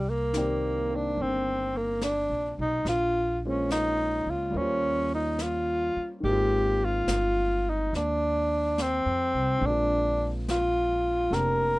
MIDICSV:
0, 0, Header, 1, 6, 480
1, 0, Start_track
1, 0, Tempo, 843882
1, 1627, Time_signature, 4, 2, 24, 8
1, 6707, End_track
2, 0, Start_track
2, 0, Title_t, "Tenor saxophone"
2, 0, Program_c, 0, 66
2, 0, Note_on_c, 0, 55, 79
2, 54, Note_on_c, 0, 58, 67
2, 63, Note_off_c, 0, 55, 0
2, 543, Note_on_c, 0, 62, 70
2, 552, Note_off_c, 0, 58, 0
2, 695, Note_on_c, 0, 60, 73
2, 703, Note_off_c, 0, 62, 0
2, 1008, Note_on_c, 0, 58, 64
2, 1017, Note_off_c, 0, 60, 0
2, 1156, Note_off_c, 0, 58, 0
2, 1160, Note_on_c, 0, 62, 72
2, 1456, Note_off_c, 0, 62, 0
2, 1485, Note_on_c, 0, 63, 68
2, 1624, Note_off_c, 0, 63, 0
2, 1642, Note_on_c, 0, 65, 78
2, 1938, Note_off_c, 0, 65, 0
2, 1979, Note_on_c, 0, 61, 62
2, 2111, Note_off_c, 0, 61, 0
2, 2113, Note_on_c, 0, 63, 80
2, 2447, Note_on_c, 0, 65, 66
2, 2456, Note_off_c, 0, 63, 0
2, 2602, Note_on_c, 0, 61, 72
2, 2610, Note_off_c, 0, 65, 0
2, 2920, Note_off_c, 0, 61, 0
2, 2926, Note_on_c, 0, 63, 62
2, 3084, Note_on_c, 0, 65, 76
2, 3093, Note_off_c, 0, 63, 0
2, 3481, Note_off_c, 0, 65, 0
2, 3552, Note_on_c, 0, 67, 82
2, 3896, Note_on_c, 0, 65, 77
2, 3905, Note_off_c, 0, 67, 0
2, 4378, Note_on_c, 0, 63, 67
2, 4387, Note_off_c, 0, 65, 0
2, 4525, Note_off_c, 0, 63, 0
2, 4529, Note_on_c, 0, 62, 82
2, 5018, Note_on_c, 0, 60, 75
2, 5026, Note_off_c, 0, 62, 0
2, 5495, Note_on_c, 0, 62, 82
2, 5504, Note_off_c, 0, 60, 0
2, 5866, Note_off_c, 0, 62, 0
2, 5975, Note_on_c, 0, 65, 83
2, 6450, Note_on_c, 0, 70, 86
2, 6458, Note_off_c, 0, 65, 0
2, 6707, Note_off_c, 0, 70, 0
2, 6707, End_track
3, 0, Start_track
3, 0, Title_t, "Grand piano"
3, 0, Program_c, 1, 0
3, 0, Control_c, 1, 64, 127
3, 189, Note_on_c, 1, 51, 52
3, 196, Note_on_c, 1, 58, 49
3, 202, Note_on_c, 1, 60, 47
3, 211, Note_on_c, 1, 74, 44
3, 213, Note_on_c, 1, 67, 53
3, 503, Note_off_c, 1, 58, 0
3, 507, Note_off_c, 1, 60, 0
3, 511, Note_on_c, 1, 58, 36
3, 516, Note_on_c, 1, 60, 36
3, 1626, Note_off_c, 1, 51, 0
3, 1628, Note_off_c, 1, 58, 0
3, 1630, Note_off_c, 1, 60, 0
3, 1635, Control_c, 1, 64, 0
3, 1637, Note_off_c, 1, 74, 0
3, 1638, Note_off_c, 1, 67, 0
3, 1731, Control_c, 1, 64, 127
3, 1965, Note_on_c, 1, 56, 42
3, 1967, Note_on_c, 1, 58, 38
3, 1967, Note_on_c, 1, 65, 44
3, 1969, Note_on_c, 1, 72, 38
3, 1972, Note_on_c, 1, 61, 42
3, 2564, Note_on_c, 1, 55, 45
3, 2571, Note_off_c, 1, 58, 0
3, 2579, Note_on_c, 1, 58, 44
3, 2583, Note_off_c, 1, 72, 0
3, 2592, Note_on_c, 1, 72, 39
3, 2594, Note_off_c, 1, 56, 0
3, 2595, Note_off_c, 1, 65, 0
3, 2596, Control_c, 1, 64, 0
3, 2597, Note_off_c, 1, 61, 0
3, 2607, Note_on_c, 1, 61, 41
3, 2621, Note_on_c, 1, 65, 53
3, 2706, Control_c, 1, 64, 127
3, 3528, Note_on_c, 1, 51, 51
3, 3540, Note_off_c, 1, 55, 0
3, 3547, Note_on_c, 1, 56, 47
3, 3548, Note_off_c, 1, 58, 0
3, 3554, Note_off_c, 1, 72, 0
3, 3560, Control_c, 1, 64, 0
3, 3561, Note_off_c, 1, 61, 0
3, 3563, Note_on_c, 1, 58, 44
3, 3568, Note_off_c, 1, 65, 0
3, 3579, Note_on_c, 1, 60, 49
3, 3593, Note_on_c, 1, 65, 55
3, 3655, Control_c, 1, 64, 127
3, 5450, Note_on_c, 1, 50, 39
3, 5458, Note_off_c, 1, 56, 0
3, 5464, Note_off_c, 1, 51, 0
3, 5466, Note_on_c, 1, 56, 35
3, 5476, Note_off_c, 1, 58, 0
3, 5484, Note_on_c, 1, 58, 38
3, 5485, Control_c, 1, 64, 0
3, 5488, Note_off_c, 1, 60, 0
3, 5497, Note_off_c, 1, 65, 0
3, 5497, Note_on_c, 1, 60, 40
3, 5516, Note_on_c, 1, 65, 39
3, 5586, Control_c, 1, 64, 127
3, 6424, Note_off_c, 1, 58, 0
3, 6428, Note_off_c, 1, 60, 0
3, 6433, Note_on_c, 1, 58, 39
3, 6436, Note_on_c, 1, 60, 30
3, 6438, Note_on_c, 1, 62, 38
3, 6445, Note_on_c, 1, 67, 39
3, 6707, Note_off_c, 1, 50, 0
3, 6707, Note_off_c, 1, 56, 0
3, 6707, Note_off_c, 1, 58, 0
3, 6707, Note_off_c, 1, 60, 0
3, 6707, Note_off_c, 1, 62, 0
3, 6707, Note_off_c, 1, 65, 0
3, 6707, Note_off_c, 1, 67, 0
3, 6707, End_track
4, 0, Start_track
4, 0, Title_t, "Upright bass"
4, 0, Program_c, 2, 32
4, 0, Note_on_c, 2, 36, 71
4, 648, Note_off_c, 2, 36, 0
4, 667, Note_on_c, 2, 31, 64
4, 1283, Note_off_c, 2, 31, 0
4, 1307, Note_on_c, 2, 34, 52
4, 1456, Note_off_c, 2, 34, 0
4, 1471, Note_on_c, 2, 35, 59
4, 1618, Note_off_c, 2, 35, 0
4, 1621, Note_on_c, 2, 34, 74
4, 2406, Note_off_c, 2, 34, 0
4, 2424, Note_on_c, 2, 37, 51
4, 2572, Note_off_c, 2, 37, 0
4, 2583, Note_on_c, 2, 39, 63
4, 3371, Note_off_c, 2, 39, 0
4, 3546, Note_on_c, 2, 32, 65
4, 4009, Note_off_c, 2, 32, 0
4, 4023, Note_on_c, 2, 31, 57
4, 4488, Note_off_c, 2, 31, 0
4, 4511, Note_on_c, 2, 39, 62
4, 5131, Note_off_c, 2, 39, 0
4, 5152, Note_on_c, 2, 41, 52
4, 5303, Note_off_c, 2, 41, 0
4, 5310, Note_on_c, 2, 36, 57
4, 5462, Note_off_c, 2, 36, 0
4, 5468, Note_on_c, 2, 34, 78
4, 6408, Note_off_c, 2, 34, 0
4, 6429, Note_on_c, 2, 29, 66
4, 6707, Note_off_c, 2, 29, 0
4, 6707, End_track
5, 0, Start_track
5, 0, Title_t, "Muted upright bass strokes"
5, 3391, Note_on_c, 9, 29, 35
5, 3448, Note_off_c, 9, 29, 0
5, 6707, End_track
6, 0, Start_track
6, 0, Title_t, "Drums"
6, 192, Note_on_c, 9, 38, 38
6, 192, Note_on_c, 9, 44, 51
6, 249, Note_off_c, 9, 38, 0
6, 249, Note_off_c, 9, 44, 0
6, 669, Note_on_c, 9, 25, 33
6, 1146, Note_on_c, 9, 38, 36
6, 1146, Note_on_c, 9, 44, 46
6, 1203, Note_off_c, 9, 38, 0
6, 1203, Note_off_c, 9, 44, 0
6, 1625, Note_off_c, 9, 25, 0
6, 1625, Note_on_c, 9, 25, 32
6, 1625, Note_on_c, 9, 38, 23
6, 1682, Note_off_c, 9, 38, 0
6, 2108, Note_on_c, 9, 38, 37
6, 2108, Note_on_c, 9, 44, 47
6, 2164, Note_off_c, 9, 38, 0
6, 2164, Note_off_c, 9, 44, 0
6, 2588, Note_off_c, 9, 25, 0
6, 2588, Note_on_c, 9, 25, 29
6, 3064, Note_on_c, 9, 38, 36
6, 3064, Note_on_c, 9, 44, 39
6, 3121, Note_off_c, 9, 38, 0
6, 3121, Note_off_c, 9, 44, 0
6, 3550, Note_off_c, 9, 25, 0
6, 3550, Note_on_c, 9, 25, 31
6, 4026, Note_on_c, 9, 38, 42
6, 4026, Note_on_c, 9, 44, 52
6, 4083, Note_off_c, 9, 38, 0
6, 4083, Note_off_c, 9, 44, 0
6, 4517, Note_off_c, 9, 25, 0
6, 4517, Note_on_c, 9, 25, 29
6, 4517, Note_on_c, 9, 38, 24
6, 4574, Note_off_c, 9, 38, 0
6, 4995, Note_on_c, 9, 38, 36
6, 4995, Note_on_c, 9, 44, 45
6, 5051, Note_off_c, 9, 38, 0
6, 5051, Note_off_c, 9, 44, 0
6, 5479, Note_off_c, 9, 25, 0
6, 5479, Note_on_c, 9, 25, 29
6, 5964, Note_on_c, 9, 38, 38
6, 5964, Note_on_c, 9, 44, 40
6, 6021, Note_off_c, 9, 38, 0
6, 6021, Note_off_c, 9, 44, 0
6, 6443, Note_off_c, 9, 25, 0
6, 6443, Note_on_c, 9, 25, 31
6, 6443, Note_on_c, 9, 38, 23
6, 6500, Note_off_c, 9, 38, 0
6, 6707, Note_off_c, 9, 25, 0
6, 6707, End_track
0, 0, End_of_file